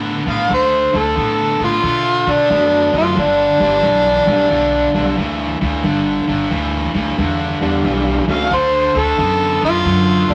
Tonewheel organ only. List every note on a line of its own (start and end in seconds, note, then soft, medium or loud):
2.50 3.17 F#3 medium
2.50 3.17 A3 medium
2.50 3.17 D4 medium
2.50 3.18 A4 medium
3.60 3.82 G3 medium
3.60 3.82 B3 medium
3.60 3.82 D4 medium
3.60 3.82 F4 medium
3.60 3.82 G4 medium
4.27 4.49 G3 medium
4.27 4.49 B3 medium
4.27 4.49 D4 medium
4.27 4.49 A4 medium
4.27 4.49 F5 medium
4.95 5.16 G3 medium
4.95 5.16 B3 medium
4.95 5.16 D4 medium
4.95 5.16 F4 medium
4.95 5.16 A4 medium
7.61 8.24 G3 medium
7.61 8.24 B3 medium
7.61 8.24 D4 medium
7.61 8.25 G4 medium
7.61 8.24 F5 medium
8.28 8.49 A3 medium
8.28 8.49 C4 medium
8.28 8.49 D4 medium
8.28 8.49 F#4 medium
8.28 8.50 A4 medium
10.28 10.34 A3 medium
10.28 10.34 D4 medium
10.28 10.34 F#4 medium
10.28 10.34 A4 medium